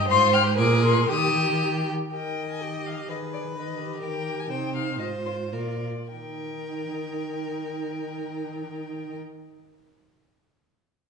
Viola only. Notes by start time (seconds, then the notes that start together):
0.09 C5
0.58 A#4
1.09 G4
2.13 A#4
2.61 G4
3.09 G#4
3.56 B4
3.79 G4
4.50 D#4
4.99 F4
5.52 F4
6.11 D#4